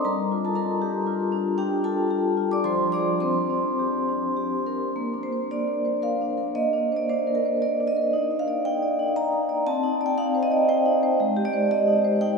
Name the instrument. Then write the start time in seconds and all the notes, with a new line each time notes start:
vibraphone
0.05 G3 A#4 A#5
0.32 F4
0.45 A4 A5
0.55 D4 A#4 A#5
0.82 G4
1.07 F4
1.32 D4
1.58 D4 G4 G5
1.84 F4 A4 A5
2.10 G4
2.37 F4
2.52 D5 D6
2.64 F3 C5 C6
2.92 D4 G#4 D5 D6
3.20 C4 C5 C6
3.50 D4
3.79 G4
4.09 D4
4.37 G4
4.66 D4 A#4
4.96 A#3
5.14 D4
5.23 C5
5.32 C5
5.51 D4 D5
5.67 A#4
5.85 C5
6.02 A#4 F5
6.21 D4
6.38 A#4
6.55 A#3 D#5
6.73 D4
6.92 C5
6.97 D5
7.09 D4 C5
7.27 A#4
7.35 A#4
7.45 C5
7.62 A#4 D5
7.80 D4
7.88 D#5
7.97 A#4
8.13 D#4
8.31 D#4
8.39 F5
8.48 D5
8.65 D#4 G5
8.82 D5
8.99 D#4
9.16 D5 A#5
9.32 D#4
9.49 D5
9.67 C4 A5
9.83 D#4
10.01 D5
10.06 G5
10.18 D#4 F5
10.35 C5
10.43 D#5
10.52 D5
10.69 C5 G5
10.86 D#4
11.03 C5
11.20 G#3
11.37 G4
11.45 D5
11.53 C5
11.71 G4 D#5
11.88 D#4
12.04 C5
12.21 D#4 G5